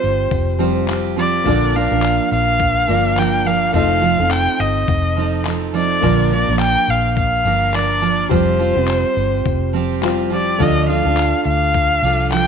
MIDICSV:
0, 0, Header, 1, 6, 480
1, 0, Start_track
1, 0, Key_signature, -2, "major"
1, 0, Tempo, 571429
1, 1226, Time_signature, 4, 2, 24, 8
1, 10477, End_track
2, 0, Start_track
2, 0, Title_t, "Violin"
2, 0, Program_c, 0, 40
2, 0, Note_on_c, 0, 72, 82
2, 742, Note_off_c, 0, 72, 0
2, 997, Note_on_c, 0, 74, 84
2, 1480, Note_on_c, 0, 77, 83
2, 1492, Note_off_c, 0, 74, 0
2, 1942, Note_off_c, 0, 77, 0
2, 1947, Note_on_c, 0, 77, 102
2, 2677, Note_on_c, 0, 79, 84
2, 2690, Note_off_c, 0, 77, 0
2, 2909, Note_on_c, 0, 77, 86
2, 2922, Note_off_c, 0, 79, 0
2, 3145, Note_off_c, 0, 77, 0
2, 3150, Note_on_c, 0, 77, 93
2, 3618, Note_on_c, 0, 79, 97
2, 3631, Note_off_c, 0, 77, 0
2, 3860, Note_on_c, 0, 75, 81
2, 3873, Note_off_c, 0, 79, 0
2, 4582, Note_off_c, 0, 75, 0
2, 4836, Note_on_c, 0, 74, 88
2, 5277, Note_off_c, 0, 74, 0
2, 5319, Note_on_c, 0, 74, 82
2, 5535, Note_off_c, 0, 74, 0
2, 5547, Note_on_c, 0, 79, 107
2, 5798, Note_on_c, 0, 77, 91
2, 5810, Note_off_c, 0, 79, 0
2, 6026, Note_off_c, 0, 77, 0
2, 6031, Note_on_c, 0, 77, 89
2, 6511, Note_on_c, 0, 74, 84
2, 6524, Note_off_c, 0, 77, 0
2, 6983, Note_off_c, 0, 74, 0
2, 6988, Note_on_c, 0, 72, 82
2, 8393, Note_off_c, 0, 72, 0
2, 8681, Note_on_c, 0, 74, 79
2, 8918, Note_on_c, 0, 75, 86
2, 8931, Note_off_c, 0, 74, 0
2, 9145, Note_off_c, 0, 75, 0
2, 9150, Note_on_c, 0, 77, 82
2, 9594, Note_off_c, 0, 77, 0
2, 9633, Note_on_c, 0, 77, 102
2, 10316, Note_off_c, 0, 77, 0
2, 10353, Note_on_c, 0, 79, 94
2, 10477, Note_off_c, 0, 79, 0
2, 10477, End_track
3, 0, Start_track
3, 0, Title_t, "Felt piano"
3, 0, Program_c, 1, 0
3, 0, Control_c, 1, 64, 127
3, 0, Note_on_c, 1, 55, 53
3, 0, Note_on_c, 1, 65, 52
3, 0, Note_on_c, 1, 72, 66
3, 471, Note_off_c, 1, 55, 0
3, 480, Note_off_c, 1, 65, 0
3, 488, Note_off_c, 1, 72, 0
3, 497, Note_on_c, 1, 55, 51
3, 507, Note_on_c, 1, 65, 44
3, 515, Note_on_c, 1, 72, 55
3, 1208, Note_on_c, 1, 58, 54
3, 1212, Note_off_c, 1, 65, 0
3, 1221, Note_off_c, 1, 55, 0
3, 1225, Note_on_c, 1, 65, 51
3, 1230, Note_off_c, 1, 72, 0
3, 1236, Control_c, 1, 64, 0
3, 1242, Note_on_c, 1, 74, 62
3, 1373, Control_c, 1, 64, 127
3, 2392, Note_off_c, 1, 58, 0
3, 2401, Note_off_c, 1, 65, 0
3, 2410, Note_off_c, 1, 74, 0
3, 2413, Note_on_c, 1, 58, 43
3, 2422, Note_on_c, 1, 65, 40
3, 2429, Note_on_c, 1, 74, 42
3, 3124, Note_on_c, 1, 57, 59
3, 3125, Note_off_c, 1, 65, 0
3, 3138, Note_on_c, 1, 65, 51
3, 3139, Note_off_c, 1, 58, 0
3, 3147, Note_off_c, 1, 74, 0
3, 3155, Control_c, 1, 64, 0
3, 3156, Note_on_c, 1, 75, 58
3, 3294, Control_c, 1, 64, 127
3, 5021, Note_off_c, 1, 57, 0
3, 5027, Note_off_c, 1, 65, 0
3, 5036, Note_off_c, 1, 75, 0
3, 5045, Note_on_c, 1, 58, 53
3, 5063, Note_on_c, 1, 65, 49
3, 5074, Control_c, 1, 64, 0
3, 5079, Note_on_c, 1, 74, 59
3, 5243, Control_c, 1, 64, 127
3, 6941, Note_off_c, 1, 58, 0
3, 6950, Note_off_c, 1, 65, 0
3, 6958, Note_off_c, 1, 74, 0
3, 6967, Note_on_c, 1, 55, 57
3, 6984, Note_on_c, 1, 65, 54
3, 6995, Control_c, 1, 64, 0
3, 7002, Note_on_c, 1, 72, 60
3, 7156, Control_c, 1, 64, 127
3, 8387, Note_off_c, 1, 55, 0
3, 8396, Note_off_c, 1, 65, 0
3, 8405, Note_off_c, 1, 72, 0
3, 8416, Note_on_c, 1, 55, 54
3, 8426, Note_on_c, 1, 65, 50
3, 8435, Note_on_c, 1, 72, 61
3, 8885, Note_on_c, 1, 57, 60
3, 8891, Note_off_c, 1, 65, 0
3, 8901, Note_off_c, 1, 55, 0
3, 8904, Note_on_c, 1, 65, 50
3, 8910, Note_off_c, 1, 72, 0
3, 8916, Control_c, 1, 64, 0
3, 8917, Note_on_c, 1, 74, 60
3, 9051, Control_c, 1, 64, 127
3, 10477, Note_off_c, 1, 57, 0
3, 10477, Note_off_c, 1, 65, 0
3, 10477, Note_off_c, 1, 74, 0
3, 10477, End_track
4, 0, Start_track
4, 0, Title_t, "Steel-string acoustic guitar"
4, 0, Program_c, 2, 25
4, 0, Note_on_c, 2, 60, 39
4, 0, Note_on_c, 2, 65, 45
4, 0, Note_on_c, 2, 67, 47
4, 493, Note_off_c, 2, 60, 0
4, 493, Note_on_c, 2, 53, 66
4, 501, Note_off_c, 2, 67, 0
4, 503, Note_on_c, 2, 60, 76
4, 508, Note_off_c, 2, 65, 0
4, 511, Note_on_c, 2, 65, 64
4, 516, Note_on_c, 2, 67, 66
4, 724, Note_off_c, 2, 53, 0
4, 733, Note_off_c, 2, 60, 0
4, 734, Note_on_c, 2, 53, 57
4, 739, Note_off_c, 2, 65, 0
4, 743, Note_on_c, 2, 60, 64
4, 747, Note_off_c, 2, 67, 0
4, 749, Note_on_c, 2, 65, 66
4, 757, Note_on_c, 2, 67, 65
4, 967, Note_off_c, 2, 53, 0
4, 974, Note_off_c, 2, 60, 0
4, 977, Note_on_c, 2, 53, 53
4, 981, Note_off_c, 2, 65, 0
4, 984, Note_on_c, 2, 60, 63
4, 987, Note_off_c, 2, 67, 0
4, 991, Note_on_c, 2, 65, 65
4, 997, Note_on_c, 2, 67, 65
4, 1221, Note_off_c, 2, 53, 0
4, 1223, Note_on_c, 2, 46, 73
4, 1225, Note_off_c, 2, 60, 0
4, 1225, Note_on_c, 2, 50, 79
4, 1228, Note_off_c, 2, 65, 0
4, 1231, Note_off_c, 2, 67, 0
4, 1231, Note_on_c, 2, 58, 83
4, 1232, Note_on_c, 2, 53, 68
4, 1236, Note_on_c, 2, 62, 84
4, 1240, Note_on_c, 2, 70, 85
4, 1453, Note_off_c, 2, 53, 0
4, 1462, Note_off_c, 2, 58, 0
4, 1463, Note_on_c, 2, 53, 59
4, 1464, Note_off_c, 2, 46, 0
4, 1466, Note_off_c, 2, 50, 0
4, 1471, Note_off_c, 2, 62, 0
4, 1472, Note_on_c, 2, 58, 61
4, 1473, Note_off_c, 2, 70, 0
4, 1480, Note_on_c, 2, 62, 66
4, 1487, Note_on_c, 2, 70, 65
4, 1599, Note_off_c, 2, 70, 0
4, 1608, Note_off_c, 2, 53, 0
4, 1610, Note_off_c, 2, 62, 0
4, 1610, Note_on_c, 2, 70, 51
4, 1613, Note_off_c, 2, 58, 0
4, 1620, Note_on_c, 2, 62, 45
4, 1625, Note_on_c, 2, 58, 42
4, 1632, Note_on_c, 2, 53, 37
4, 2408, Note_off_c, 2, 53, 0
4, 2412, Note_on_c, 2, 53, 58
4, 2415, Note_off_c, 2, 58, 0
4, 2423, Note_off_c, 2, 62, 0
4, 2425, Note_off_c, 2, 70, 0
4, 2425, Note_on_c, 2, 58, 63
4, 2433, Note_on_c, 2, 62, 58
4, 2440, Note_on_c, 2, 70, 66
4, 2648, Note_off_c, 2, 53, 0
4, 2657, Note_off_c, 2, 58, 0
4, 2658, Note_on_c, 2, 53, 58
4, 2666, Note_off_c, 2, 62, 0
4, 2667, Note_on_c, 2, 58, 61
4, 2672, Note_off_c, 2, 70, 0
4, 2676, Note_on_c, 2, 62, 59
4, 2683, Note_on_c, 2, 70, 65
4, 2888, Note_off_c, 2, 53, 0
4, 2896, Note_off_c, 2, 58, 0
4, 2898, Note_on_c, 2, 53, 58
4, 2904, Note_off_c, 2, 62, 0
4, 2906, Note_on_c, 2, 58, 58
4, 2914, Note_off_c, 2, 70, 0
4, 2915, Note_on_c, 2, 62, 58
4, 2923, Note_on_c, 2, 70, 59
4, 3131, Note_off_c, 2, 53, 0
4, 3141, Note_on_c, 2, 53, 72
4, 3144, Note_off_c, 2, 58, 0
4, 3147, Note_on_c, 2, 60, 75
4, 3148, Note_off_c, 2, 62, 0
4, 3152, Note_on_c, 2, 63, 79
4, 3154, Note_off_c, 2, 70, 0
4, 3158, Note_on_c, 2, 69, 87
4, 3363, Note_off_c, 2, 53, 0
4, 3370, Note_off_c, 2, 60, 0
4, 3373, Note_on_c, 2, 53, 61
4, 3379, Note_off_c, 2, 63, 0
4, 3381, Note_on_c, 2, 60, 60
4, 3386, Note_off_c, 2, 69, 0
4, 3389, Note_on_c, 2, 63, 60
4, 3397, Note_on_c, 2, 69, 63
4, 3507, Note_off_c, 2, 69, 0
4, 3517, Note_on_c, 2, 69, 46
4, 3523, Note_off_c, 2, 53, 0
4, 3523, Note_off_c, 2, 63, 0
4, 3527, Note_off_c, 2, 60, 0
4, 3533, Note_on_c, 2, 63, 40
4, 3544, Note_on_c, 2, 60, 43
4, 4334, Note_on_c, 2, 53, 55
4, 4336, Note_off_c, 2, 60, 0
4, 4339, Note_off_c, 2, 69, 0
4, 4341, Note_off_c, 2, 63, 0
4, 4346, Note_on_c, 2, 60, 58
4, 4351, Note_on_c, 2, 63, 64
4, 4360, Note_on_c, 2, 69, 58
4, 4561, Note_off_c, 2, 53, 0
4, 4572, Note_off_c, 2, 60, 0
4, 4572, Note_on_c, 2, 53, 55
4, 4579, Note_off_c, 2, 63, 0
4, 4582, Note_on_c, 2, 60, 68
4, 4586, Note_off_c, 2, 69, 0
4, 4589, Note_on_c, 2, 63, 67
4, 4596, Note_on_c, 2, 69, 67
4, 4807, Note_off_c, 2, 53, 0
4, 4817, Note_on_c, 2, 53, 59
4, 4818, Note_off_c, 2, 60, 0
4, 4824, Note_off_c, 2, 63, 0
4, 4828, Note_on_c, 2, 60, 63
4, 4830, Note_off_c, 2, 69, 0
4, 4834, Note_on_c, 2, 63, 59
4, 4840, Note_on_c, 2, 69, 61
4, 5056, Note_on_c, 2, 46, 69
4, 5057, Note_off_c, 2, 53, 0
4, 5062, Note_on_c, 2, 50, 71
4, 5065, Note_off_c, 2, 60, 0
4, 5067, Note_off_c, 2, 63, 0
4, 5067, Note_on_c, 2, 53, 79
4, 5068, Note_off_c, 2, 69, 0
4, 5069, Note_on_c, 2, 58, 78
4, 5071, Note_on_c, 2, 62, 76
4, 5072, Note_on_c, 2, 70, 82
4, 5292, Note_off_c, 2, 53, 0
4, 5300, Note_off_c, 2, 46, 0
4, 5301, Note_off_c, 2, 58, 0
4, 5302, Note_on_c, 2, 53, 59
4, 5303, Note_off_c, 2, 50, 0
4, 5308, Note_off_c, 2, 62, 0
4, 5308, Note_off_c, 2, 70, 0
4, 5311, Note_on_c, 2, 58, 56
4, 5319, Note_on_c, 2, 62, 62
4, 5328, Note_on_c, 2, 70, 61
4, 5433, Note_off_c, 2, 70, 0
4, 5444, Note_off_c, 2, 62, 0
4, 5444, Note_on_c, 2, 70, 46
4, 5447, Note_off_c, 2, 53, 0
4, 5452, Note_off_c, 2, 58, 0
4, 5454, Note_on_c, 2, 62, 45
4, 5460, Note_on_c, 2, 58, 41
4, 5467, Note_on_c, 2, 53, 35
4, 6250, Note_off_c, 2, 53, 0
4, 6254, Note_on_c, 2, 53, 56
4, 6255, Note_off_c, 2, 58, 0
4, 6262, Note_off_c, 2, 70, 0
4, 6263, Note_off_c, 2, 62, 0
4, 6265, Note_on_c, 2, 58, 60
4, 6273, Note_on_c, 2, 62, 59
4, 6278, Note_on_c, 2, 70, 59
4, 6485, Note_off_c, 2, 53, 0
4, 6494, Note_off_c, 2, 58, 0
4, 6495, Note_on_c, 2, 53, 52
4, 6502, Note_off_c, 2, 62, 0
4, 6504, Note_on_c, 2, 58, 51
4, 6511, Note_off_c, 2, 70, 0
4, 6512, Note_on_c, 2, 62, 57
4, 6520, Note_on_c, 2, 70, 65
4, 6721, Note_off_c, 2, 53, 0
4, 6731, Note_off_c, 2, 58, 0
4, 6731, Note_on_c, 2, 53, 62
4, 6735, Note_off_c, 2, 62, 0
4, 6741, Note_on_c, 2, 58, 62
4, 6743, Note_off_c, 2, 70, 0
4, 6745, Note_on_c, 2, 62, 57
4, 6753, Note_on_c, 2, 70, 60
4, 6964, Note_off_c, 2, 53, 0
4, 6974, Note_on_c, 2, 53, 74
4, 6979, Note_off_c, 2, 58, 0
4, 6981, Note_off_c, 2, 62, 0
4, 6982, Note_on_c, 2, 60, 81
4, 6985, Note_on_c, 2, 65, 80
4, 6986, Note_off_c, 2, 70, 0
4, 6990, Note_on_c, 2, 67, 82
4, 7202, Note_off_c, 2, 53, 0
4, 7211, Note_off_c, 2, 60, 0
4, 7212, Note_on_c, 2, 53, 53
4, 7220, Note_off_c, 2, 65, 0
4, 7221, Note_on_c, 2, 60, 56
4, 7225, Note_off_c, 2, 67, 0
4, 7230, Note_on_c, 2, 65, 60
4, 7235, Note_on_c, 2, 67, 67
4, 7343, Note_off_c, 2, 67, 0
4, 7353, Note_on_c, 2, 67, 48
4, 7356, Note_off_c, 2, 65, 0
4, 7363, Note_off_c, 2, 53, 0
4, 7366, Note_on_c, 2, 65, 46
4, 7367, Note_off_c, 2, 60, 0
4, 7376, Note_on_c, 2, 60, 40
4, 8174, Note_off_c, 2, 60, 0
4, 8174, Note_on_c, 2, 53, 66
4, 8177, Note_off_c, 2, 67, 0
4, 8185, Note_on_c, 2, 60, 66
4, 8189, Note_off_c, 2, 65, 0
4, 8192, Note_on_c, 2, 65, 76
4, 8199, Note_on_c, 2, 67, 70
4, 8407, Note_off_c, 2, 53, 0
4, 8417, Note_on_c, 2, 53, 60
4, 8421, Note_off_c, 2, 60, 0
4, 8429, Note_off_c, 2, 65, 0
4, 8431, Note_on_c, 2, 60, 64
4, 8432, Note_off_c, 2, 67, 0
4, 8437, Note_on_c, 2, 65, 62
4, 8443, Note_on_c, 2, 67, 65
4, 8641, Note_off_c, 2, 53, 0
4, 8651, Note_on_c, 2, 53, 61
4, 8654, Note_off_c, 2, 60, 0
4, 8657, Note_off_c, 2, 65, 0
4, 8665, Note_on_c, 2, 60, 59
4, 8667, Note_on_c, 2, 65, 64
4, 8668, Note_off_c, 2, 67, 0
4, 8678, Note_on_c, 2, 67, 73
4, 8893, Note_off_c, 2, 53, 0
4, 8900, Note_on_c, 2, 50, 67
4, 8901, Note_off_c, 2, 65, 0
4, 8903, Note_on_c, 2, 53, 76
4, 8905, Note_off_c, 2, 60, 0
4, 8909, Note_on_c, 2, 62, 73
4, 8910, Note_off_c, 2, 67, 0
4, 8911, Note_on_c, 2, 65, 87
4, 8913, Note_on_c, 2, 69, 79
4, 9131, Note_off_c, 2, 53, 0
4, 9138, Note_off_c, 2, 62, 0
4, 9141, Note_on_c, 2, 53, 61
4, 9143, Note_off_c, 2, 50, 0
4, 9145, Note_off_c, 2, 65, 0
4, 9148, Note_on_c, 2, 62, 60
4, 9149, Note_off_c, 2, 69, 0
4, 9155, Note_on_c, 2, 65, 65
4, 9164, Note_on_c, 2, 69, 65
4, 9279, Note_off_c, 2, 69, 0
4, 9287, Note_off_c, 2, 53, 0
4, 9289, Note_on_c, 2, 69, 51
4, 9290, Note_off_c, 2, 65, 0
4, 9291, Note_off_c, 2, 62, 0
4, 9300, Note_on_c, 2, 65, 43
4, 9313, Note_on_c, 2, 62, 42
4, 10105, Note_on_c, 2, 53, 62
4, 10112, Note_off_c, 2, 62, 0
4, 10115, Note_on_c, 2, 62, 65
4, 10117, Note_off_c, 2, 65, 0
4, 10120, Note_on_c, 2, 65, 65
4, 10125, Note_off_c, 2, 69, 0
4, 10129, Note_on_c, 2, 69, 64
4, 10337, Note_off_c, 2, 53, 0
4, 10343, Note_off_c, 2, 62, 0
4, 10347, Note_on_c, 2, 53, 51
4, 10353, Note_off_c, 2, 65, 0
4, 10353, Note_on_c, 2, 62, 55
4, 10357, Note_off_c, 2, 69, 0
4, 10362, Note_on_c, 2, 65, 56
4, 10368, Note_on_c, 2, 69, 64
4, 10477, Note_off_c, 2, 53, 0
4, 10477, Note_off_c, 2, 62, 0
4, 10477, Note_off_c, 2, 65, 0
4, 10477, Note_off_c, 2, 69, 0
4, 10477, End_track
5, 0, Start_track
5, 0, Title_t, "Fingered electric bass"
5, 0, Program_c, 3, 33
5, 29, Note_on_c, 3, 31, 75
5, 249, Note_off_c, 3, 31, 0
5, 260, Note_on_c, 3, 29, 89
5, 1189, Note_off_c, 3, 29, 0
5, 1225, Note_on_c, 3, 34, 94
5, 1578, Note_off_c, 3, 34, 0
5, 1608, Note_on_c, 3, 34, 93
5, 1829, Note_off_c, 3, 34, 0
5, 1945, Note_on_c, 3, 34, 75
5, 2391, Note_off_c, 3, 34, 0
5, 2424, Note_on_c, 3, 31, 76
5, 3111, Note_off_c, 3, 31, 0
5, 3143, Note_on_c, 3, 29, 86
5, 3497, Note_off_c, 3, 29, 0
5, 3523, Note_on_c, 3, 29, 89
5, 3746, Note_off_c, 3, 29, 0
5, 3861, Note_on_c, 3, 31, 77
5, 4083, Note_off_c, 3, 31, 0
5, 4099, Note_on_c, 3, 29, 90
5, 5028, Note_off_c, 3, 29, 0
5, 5063, Note_on_c, 3, 34, 86
5, 5417, Note_off_c, 3, 34, 0
5, 5445, Note_on_c, 3, 34, 85
5, 5667, Note_off_c, 3, 34, 0
5, 5781, Note_on_c, 3, 34, 71
5, 6229, Note_off_c, 3, 34, 0
5, 6255, Note_on_c, 3, 31, 82
5, 6946, Note_off_c, 3, 31, 0
5, 6981, Note_on_c, 3, 29, 87
5, 7336, Note_off_c, 3, 29, 0
5, 7362, Note_on_c, 3, 29, 82
5, 7586, Note_off_c, 3, 29, 0
5, 7699, Note_on_c, 3, 31, 80
5, 7922, Note_off_c, 3, 31, 0
5, 7941, Note_on_c, 3, 29, 83
5, 8869, Note_off_c, 3, 29, 0
5, 8905, Note_on_c, 3, 38, 88
5, 9258, Note_off_c, 3, 38, 0
5, 9283, Note_on_c, 3, 38, 82
5, 9507, Note_off_c, 3, 38, 0
5, 9621, Note_on_c, 3, 38, 79
5, 10070, Note_off_c, 3, 38, 0
5, 10100, Note_on_c, 3, 36, 75
5, 10477, Note_off_c, 3, 36, 0
5, 10477, End_track
6, 0, Start_track
6, 0, Title_t, "Drums"
6, 24, Note_on_c, 9, 54, 42
6, 108, Note_off_c, 9, 54, 0
6, 263, Note_on_c, 9, 36, 110
6, 269, Note_on_c, 9, 54, 46
6, 347, Note_off_c, 9, 36, 0
6, 353, Note_off_c, 9, 54, 0
6, 417, Note_on_c, 9, 54, 25
6, 501, Note_off_c, 9, 54, 0
6, 504, Note_on_c, 9, 54, 47
6, 588, Note_off_c, 9, 54, 0
6, 742, Note_on_c, 9, 39, 101
6, 748, Note_on_c, 9, 54, 80
6, 826, Note_off_c, 9, 39, 0
6, 832, Note_off_c, 9, 54, 0
6, 991, Note_on_c, 9, 54, 51
6, 1075, Note_off_c, 9, 54, 0
6, 1224, Note_on_c, 9, 36, 107
6, 1227, Note_on_c, 9, 54, 44
6, 1308, Note_off_c, 9, 36, 0
6, 1311, Note_off_c, 9, 54, 0
6, 1465, Note_on_c, 9, 54, 36
6, 1549, Note_off_c, 9, 54, 0
6, 1698, Note_on_c, 9, 54, 91
6, 1701, Note_on_c, 9, 39, 101
6, 1782, Note_off_c, 9, 54, 0
6, 1785, Note_off_c, 9, 39, 0
6, 1947, Note_on_c, 9, 54, 45
6, 2031, Note_off_c, 9, 54, 0
6, 2182, Note_on_c, 9, 36, 106
6, 2190, Note_on_c, 9, 54, 46
6, 2266, Note_off_c, 9, 36, 0
6, 2274, Note_off_c, 9, 54, 0
6, 2337, Note_on_c, 9, 54, 26
6, 2421, Note_off_c, 9, 54, 0
6, 2427, Note_on_c, 9, 54, 43
6, 2511, Note_off_c, 9, 54, 0
6, 2566, Note_on_c, 9, 54, 29
6, 2650, Note_off_c, 9, 54, 0
6, 2666, Note_on_c, 9, 39, 97
6, 2666, Note_on_c, 9, 54, 80
6, 2750, Note_off_c, 9, 39, 0
6, 2750, Note_off_c, 9, 54, 0
6, 2905, Note_on_c, 9, 54, 49
6, 2989, Note_off_c, 9, 54, 0
6, 3138, Note_on_c, 9, 54, 45
6, 3143, Note_on_c, 9, 36, 104
6, 3222, Note_off_c, 9, 54, 0
6, 3227, Note_off_c, 9, 36, 0
6, 3384, Note_on_c, 9, 54, 36
6, 3468, Note_off_c, 9, 54, 0
6, 3534, Note_on_c, 9, 54, 32
6, 3618, Note_off_c, 9, 54, 0
6, 3618, Note_on_c, 9, 54, 88
6, 3620, Note_on_c, 9, 39, 104
6, 3702, Note_off_c, 9, 54, 0
6, 3704, Note_off_c, 9, 39, 0
6, 3860, Note_on_c, 9, 54, 44
6, 3944, Note_off_c, 9, 54, 0
6, 4011, Note_on_c, 9, 54, 26
6, 4095, Note_off_c, 9, 54, 0
6, 4100, Note_on_c, 9, 36, 117
6, 4107, Note_on_c, 9, 54, 48
6, 4184, Note_off_c, 9, 36, 0
6, 4191, Note_off_c, 9, 54, 0
6, 4251, Note_on_c, 9, 54, 25
6, 4335, Note_off_c, 9, 54, 0
6, 4340, Note_on_c, 9, 54, 41
6, 4424, Note_off_c, 9, 54, 0
6, 4481, Note_on_c, 9, 54, 27
6, 4565, Note_off_c, 9, 54, 0
6, 4576, Note_on_c, 9, 54, 83
6, 4580, Note_on_c, 9, 39, 100
6, 4660, Note_off_c, 9, 54, 0
6, 4664, Note_off_c, 9, 39, 0
6, 4830, Note_on_c, 9, 54, 49
6, 4914, Note_off_c, 9, 54, 0
6, 5062, Note_on_c, 9, 36, 110
6, 5068, Note_on_c, 9, 54, 44
6, 5146, Note_off_c, 9, 36, 0
6, 5152, Note_off_c, 9, 54, 0
6, 5314, Note_on_c, 9, 54, 35
6, 5398, Note_off_c, 9, 54, 0
6, 5460, Note_on_c, 9, 54, 28
6, 5538, Note_on_c, 9, 39, 100
6, 5544, Note_off_c, 9, 54, 0
6, 5544, Note_on_c, 9, 54, 92
6, 5622, Note_off_c, 9, 39, 0
6, 5628, Note_off_c, 9, 54, 0
6, 5786, Note_on_c, 9, 54, 45
6, 5870, Note_off_c, 9, 54, 0
6, 6021, Note_on_c, 9, 36, 103
6, 6029, Note_on_c, 9, 54, 47
6, 6105, Note_off_c, 9, 36, 0
6, 6113, Note_off_c, 9, 54, 0
6, 6176, Note_on_c, 9, 54, 26
6, 6260, Note_off_c, 9, 54, 0
6, 6262, Note_on_c, 9, 54, 44
6, 6346, Note_off_c, 9, 54, 0
6, 6502, Note_on_c, 9, 39, 99
6, 6504, Note_on_c, 9, 54, 78
6, 6586, Note_off_c, 9, 39, 0
6, 6588, Note_off_c, 9, 54, 0
6, 6747, Note_on_c, 9, 54, 48
6, 6831, Note_off_c, 9, 54, 0
6, 6982, Note_on_c, 9, 36, 112
6, 6986, Note_on_c, 9, 54, 43
6, 7066, Note_off_c, 9, 36, 0
6, 7070, Note_off_c, 9, 54, 0
6, 7227, Note_on_c, 9, 54, 37
6, 7311, Note_off_c, 9, 54, 0
6, 7457, Note_on_c, 9, 39, 100
6, 7460, Note_on_c, 9, 54, 85
6, 7541, Note_off_c, 9, 39, 0
6, 7544, Note_off_c, 9, 54, 0
6, 7700, Note_on_c, 9, 54, 45
6, 7784, Note_off_c, 9, 54, 0
6, 7854, Note_on_c, 9, 54, 27
6, 7938, Note_off_c, 9, 54, 0
6, 7943, Note_on_c, 9, 36, 112
6, 7947, Note_on_c, 9, 54, 51
6, 8027, Note_off_c, 9, 36, 0
6, 8031, Note_off_c, 9, 54, 0
6, 8190, Note_on_c, 9, 54, 41
6, 8274, Note_off_c, 9, 54, 0
6, 8327, Note_on_c, 9, 54, 28
6, 8411, Note_off_c, 9, 54, 0
6, 8422, Note_on_c, 9, 54, 83
6, 8425, Note_on_c, 9, 39, 106
6, 8506, Note_off_c, 9, 54, 0
6, 8509, Note_off_c, 9, 39, 0
6, 8671, Note_on_c, 9, 54, 50
6, 8755, Note_off_c, 9, 54, 0
6, 8906, Note_on_c, 9, 36, 109
6, 8909, Note_on_c, 9, 54, 47
6, 8990, Note_off_c, 9, 36, 0
6, 8993, Note_off_c, 9, 54, 0
6, 9150, Note_on_c, 9, 54, 38
6, 9234, Note_off_c, 9, 54, 0
6, 9384, Note_on_c, 9, 39, 96
6, 9389, Note_on_c, 9, 54, 91
6, 9468, Note_off_c, 9, 39, 0
6, 9473, Note_off_c, 9, 54, 0
6, 9631, Note_on_c, 9, 54, 44
6, 9715, Note_off_c, 9, 54, 0
6, 9774, Note_on_c, 9, 54, 25
6, 9858, Note_off_c, 9, 54, 0
6, 9865, Note_on_c, 9, 36, 108
6, 9873, Note_on_c, 9, 54, 47
6, 9949, Note_off_c, 9, 36, 0
6, 9957, Note_off_c, 9, 54, 0
6, 10107, Note_on_c, 9, 54, 42
6, 10191, Note_off_c, 9, 54, 0
6, 10247, Note_on_c, 9, 54, 28
6, 10331, Note_off_c, 9, 54, 0
6, 10347, Note_on_c, 9, 39, 102
6, 10350, Note_on_c, 9, 54, 82
6, 10431, Note_off_c, 9, 39, 0
6, 10434, Note_off_c, 9, 54, 0
6, 10477, End_track
0, 0, End_of_file